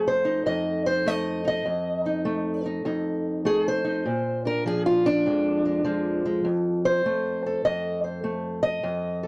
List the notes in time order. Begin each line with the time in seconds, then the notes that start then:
Already playing: F2 A3
0.08 C5
0.25 D#4
0.46 F2 D#5
0.86 C5
1.06 A3 D#5
1.45 D#4 D#5
1.66 F2
2.06 D#4
2.25 A3
2.66 D#4
2.85 F2 D#4
3.45 A3 G#4
3.68 C5
3.85 D#4
4.05 A#2
4.45 D4 A#4
4.66 F3 G#4
4.86 F4
5.06 D4
5.26 F2 G#3
5.65 G#3
5.84 F3 G#3
6.25 G#3
6.45 F2
6.85 C5
7.06 A3
7.46 A4
7.65 F2 D#5
8.04 C5
8.24 A3
8.63 D#5
8.83 F2
9.23 A4